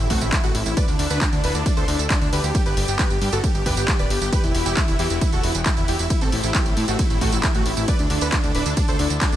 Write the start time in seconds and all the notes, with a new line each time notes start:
Already playing: A3 C4 G4
0.10 A1 A3 F#4, kick, open hi-hat
0.21 A1 E4, closed hi-hat, tambourine
0.32 E4, kick, clap, closed hi-hat, ride, tambourine
0.43 A1 A3 F#4, closed hi-hat, tambourine
0.55 A1 E4, open hi-hat
0.66 A1 E4, tambourine
0.77 D3 D4 E4 A4 B4 D5, kick, closed hi-hat, ride, tambourine
0.88 D2 D4, closed hi-hat, tambourine
0.99 D2 D4, open hi-hat
1.10 D2 D4 B4, closed hi-hat, tambourine
1.21 D4, kick, clap, closed hi-hat, ride, tambourine
1.32 D2 D4, closed hi-hat, tambourine
1.44 D1 D4 B4, open hi-hat
1.55 D2 D4, closed hi-hat, tambourine
1.66 D4, kick, closed hi-hat, ride, tambourine
1.77 D2 A4 C5, closed hi-hat, tambourine
1.88 D2 D4, open hi-hat
1.99 D2, closed hi-hat, tambourine
2.10 D4, kick, clap, closed hi-hat, ride, tambourine
2.21 D2 D4, closed hi-hat, tambourine
2.32 D2 G4 B4, open hi-hat
2.44 D2 G4, tambourine
2.55 B3 G4, kick, closed hi-hat, ride, tambourine
2.66 G1 G4 B4, closed hi-hat, tambourine
2.77 G1 G4, open hi-hat
2.88 G1 G4, tambourine
2.99 G4 B4, kick, clap, closed hi-hat, ride, tambourine
3.10 G1 G4, closed hi-hat, tambourine
3.21 G2 G4, open hi-hat
3.32 G1 F#4 A4, closed hi-hat, tambourine
3.44 G4, kick, closed hi-hat, ride, tambourine
3.55 G1 G4, closed hi-hat, tambourine
3.66 G1 G4 B4, kick, open hi-hat
3.77 G1 G4, closed hi-hat, tambourine
3.88 G4, kick, clap, closed hi-hat, ride, tambourine
3.99 D1 B4 D5, closed hi-hat, tambourine
4.10 G1 G4, open hi-hat
4.21 G1 G4, closed hi-hat, tambourine
4.32 E3 F#4 G4 B4, kick, closed hi-hat, ride, tambourine
4.43 E1 E4, closed hi-hat, tambourine
4.55 E1 E4, open hi-hat
4.66 E1 E4 G4, closed hi-hat, tambourine
4.77 E4, kick, clap, closed hi-hat, ride, tambourine
4.88 E1 E4, closed hi-hat, tambourine
4.99 E2 E4 G4, open hi-hat
5.10 E1 E4, closed hi-hat, tambourine
5.21 E4, kick, closed hi-hat, ride, tambourine
5.32 E1 F#4 A4, closed hi-hat, tambourine
5.43 E1 E4, open hi-hat
5.55 E1, tambourine
5.66 E4, kick, clap, closed hi-hat, ride, tambourine
5.77 E1 E4, closed hi-hat, tambourine
5.88 E1 E4 G4, open hi-hat
5.99 E1 E4, tambourine
6.10 A3 C4 E4 G4, kick, closed hi-hat, ride, tambourine
6.21 A1 C4 A4, closed hi-hat, tambourine
6.32 A1 E4, open hi-hat
6.43 A1 E4, closed hi-hat, tambourine
6.55 E4 G4, kick, clap, closed hi-hat, ride, tambourine
6.66 A1 E4, closed hi-hat, tambourine
6.77 A2 E4, open hi-hat
6.88 A1 A3 F#4, closed hi-hat, tambourine
6.99 E4, kick, closed hi-hat, ride, tambourine
7.10 A1 E4, closed hi-hat, tambourine
7.21 A1 A3 F#4, kick, open hi-hat
7.32 A1 E4, closed hi-hat, tambourine
7.43 E4, kick, clap, closed hi-hat, ride, tambourine
7.55 A1 A3 F#4, closed hi-hat, tambourine
7.66 A1 E4, open hi-hat
7.77 A1 E4, tambourine
7.88 D3 D4 E4 A4 B4 D5, kick, closed hi-hat, ride, tambourine
7.99 D2 D4, closed hi-hat, tambourine
8.10 D2 D4, open hi-hat
8.21 D2 D4 B4, closed hi-hat, tambourine
8.32 D4, kick, clap, closed hi-hat, ride, tambourine
8.44 D2 D4, closed hi-hat, tambourine
8.55 D1 D4 B4, open hi-hat
8.66 D2 D4, closed hi-hat, tambourine
8.77 D4, kick, closed hi-hat, ride, tambourine
8.88 D2 A4 C5, closed hi-hat, tambourine
8.99 D2 D4, open hi-hat
9.10 D2, closed hi-hat, tambourine
9.21 D4, kick, clap, closed hi-hat, ride, tambourine
9.32 D2 D4, closed hi-hat, tambourine